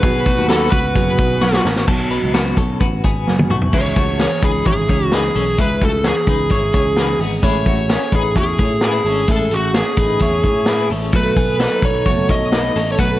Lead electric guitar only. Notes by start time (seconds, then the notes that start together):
Already playing: B4
0.49 A4
0.71 B4
3.74 C#5
4.44 G#4
4.67 G#4
5.16 G#4
5.61 B4
5.85 A4
6.08 G#4
7.44 C#5
8.15 G#4
8.38 G#4
8.85 G#4
9.32 A4
9.54 F#4
9.77 G#4
11.16 B4
11.85 C#5
12.31 D#5
12.92 C#5
12.99 B4